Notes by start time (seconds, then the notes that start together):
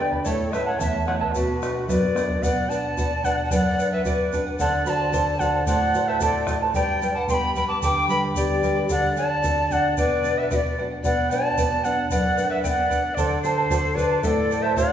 Already playing: D3 B3 D4 G4
0.00 B4 D5 G5 B5
0.12 B4 D5 B5, bombo low
0.24 A2 E4 A4 C#5 D5 E5 A5, bombo low, shaker
0.52 A3 C#4 E4 A4 B4 E5 A5, bombo rim, shaker
0.65 E4 A4 C#5 F#5 A5
0.79 E2 E4 A4 C#5 E5 A5, bombo low, shaker
1.06 A3 C#4 E4 A4 C#5 E5 F#5 A5, bombo rim
1.19 E4 A4 B4 E5 A5, bombo low
1.33 B2 F#4 B4 D5 F#5, bombo low, shaker
1.61 B3 D4 F#4 B4 D5 F#5, bombo rim, shaker
1.76 D5 F#5
1.88 F#2 B4 D5 E5 F#5, bombo low, shaker
1.93 D5
2.15 B3 D4 F#4 B4 D5 F#5, bombo rim, shaker
2.29 D5 F#5, bombo low
2.42 B2 B4 D5 F#5, bombo low, shaker
2.69 D4 B4 D5 F#5 A5, shaker
2.84 D5 F#5
2.97 F#4 B4 D5 F#5, bombo low, shaker
3.23 D4 B4 D5 F#5, bombo low, shaker
3.38 D5 F#5
3.44 F#5 A5
3.51 F#2 B4 D5 F#5, bombo low, shaker
3.78 D4 B4 D5 F#5, shaker
3.92 B4 D5 E5 F#5
4.05 F#4 B4 D5 F#5, bombo low, shaker
4.32 D4 B4 D5 F#5, bombo low, shaker
4.46 D5 F#5
4.59 D3 A4 C5 D5 F#5 A5, bombo low, shaker
4.86 F#4 A4 C5 D5 F#5 A5 B5, shaker
4.99 A4 C5 A5
5.12 A4 C5 D5 F#5 A5, bombo low, shaker
5.40 F#4 A4 C5 D5 F#5 A5, bombo low, shaker
5.54 A4 C5 A5
5.66 A2 A4 C5 D5 F#5 A5, bombo low, shaker
5.94 F#4 A4 C5 F#5 A5, shaker
6.08 A4 C5 E5 A5
6.20 A4 C5 D5 F#5 A5, bombo low, shaker
6.47 F#4 A4 C5 F#5 A5, bombo rim, bombo low, shaker
6.62 A4 C5 A5
6.73 G2 G4 B4 D5 G5 B5, bombo low, shaker
7.02 G3 B4 D5 G5 B5, shaker
7.14 B4 D5 F#5 A5 B5
7.27 B3 G4 B4 D5 G5 B5 C6, bombo low, shaker
7.34 B5
7.55 G3 B4 D5 G5 B5, bombo low, shaker
7.68 B4 D5 A5 B5 D6
7.82 D3 G4 B4 D5 G5 B5 D6, bombo low, shaker
8.08 G3 B4 D5 G5 B5, shaker
8.24 B4 D5 B5
8.35 B3 G4 B4 D5 G5 B5, bombo low, shaker
8.62 G3 B4 D5 G5 B5, bombo low, shaker
8.76 B4 D5 B5
8.89 D3 A4 D5 F#5, bombo low, shaker
9.16 D4 A4 D5 F#5 A5, shaker
9.30 F#5
9.43 F#4 A4 D5 F#5, bombo low, shaker
9.71 D4 A4 D5 F#5, bombo low, shaker
9.85 D5 F#5
9.97 B2 B4 D5 F#5, bombo low, shaker
10.24 D4 B4 D5 F#5, shaker
10.37 B4 D5 E5 F#5
10.51 F#4 B4 D5 E5 F#5, bombo low, shaker
10.56 D5
10.78 D4 B4 D5 F#5
10.91 D5 F#5
11.03 B2 B4 D5 F#5, bombo low, shaker
11.31 D4 B4 D5 F#5 A5, shaker
11.45 D5 F#5
11.58 B3 B4 D5 F#5, bombo low, shaker
11.83 D4 B4 D5 F#5, shaker
11.97 D5 F#5
12.10 F#2 B4 D5 F#5, bombo low, shaker
12.37 D4 B4 D5 F#5, shaker
12.49 B4 D5 E5 F#5
12.63 B3 B4 D5 F#5 G5, bombo low, shaker
12.68 F#5
12.90 D4 B4 D5 F#5, bombo low, shaker
13.04 D5 F#5
13.15 D3 A4 C5 D5 F#5 A5, bombo low, shaker
13.42 A4 C5 F#5 A5, shaker
13.58 A4 C5 A5
13.70 F#4 A4 C5 D5 F#5 A5, bombo low, shaker
13.95 A4 B4 C5 D5 F#5 A5, bombo low, shaker
14.11 A4 C5 A5
14.21 A2 A4 C5 D5 E5 F#5 A5, bombo low, shaker
14.27 D5
14.50 A4 C5 F#5 A5, shaker
14.61 C5 E5 A5
14.65 A4 C5
14.75 F#4 A4 C5 D5 F#5 A5, bombo low, shaker